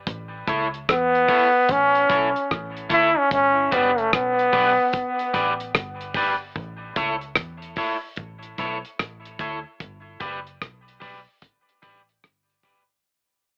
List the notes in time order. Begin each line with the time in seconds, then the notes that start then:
0.07 A1, kick, closed hi-hat
0.47 C#2 E4 A4 C#5, kick, closed hi-hat
0.74 closed hi-hat
0.89 E2 B3, kick, cross-stick, closed hi-hat
1.15 closed hi-hat
1.28 E4 A4 C#5, kick, open hi-hat
1.69 A1 C#4, kick, closed hi-hat
1.95 closed hi-hat
2.09 B1 E4 A4 C#5, kick, closed hi-hat
2.36 closed hi-hat
2.51 A1, kick, cross-stick, closed hi-hat
2.77 closed hi-hat
2.90 D2 E4 A4 C#5, kick, closed hi-hat
3.18 C#4
3.31 G1 C#4, kick, closed hi-hat
3.71 F#1 B3 G4 B4 D5, kick, closed hi-hat
3.98 A3, closed hi-hat
4.13 B1 B3, kick, cross-stick, closed hi-hat
4.39 closed hi-hat
4.52 B1 G4 B4 D5, kick, open hi-hat
4.93 kick, closed hi-hat
5.19 closed hi-hat
5.34 A1 G4 B4 D5, kick, closed hi-hat
5.60 closed hi-hat
5.75 G1, kick, cross-stick, closed hi-hat
6.01 closed hi-hat
6.15 G4 B4 D5, kick, open hi-hat
6.56 A1, kick, closed hi-hat
6.96 C#2 E4 A4 C#5, kick, closed hi-hat
7.21 closed hi-hat
7.36 E2, kick, cross-stick, closed hi-hat
7.62 closed hi-hat
7.76 E4 A4 C#5, kick, open hi-hat
8.16 A1, kick, closed hi-hat
8.42 closed hi-hat
8.58 B1 E4 A4 C#5, kick, closed hi-hat
8.85 closed hi-hat
8.99 A1, kick, cross-stick, closed hi-hat
9.25 closed hi-hat
9.39 D2 E4 A4 C#5, kick, closed hi-hat
9.80 G1, kick, closed hi-hat
10.20 F#1 G4 B4 D5, kick, closed hi-hat
10.47 closed hi-hat
10.62 B1, kick, cross-stick, closed hi-hat
10.88 closed hi-hat
11.00 B1 G4 B4 D5, kick, open hi-hat
11.42 kick, closed hi-hat
11.69 closed hi-hat
11.82 A1 G4 B4 D5, kick, closed hi-hat
12.09 closed hi-hat
12.24 G1, kick, cross-stick, closed hi-hat
12.50 closed hi-hat
12.63 G4 B4 D5, kick, closed hi-hat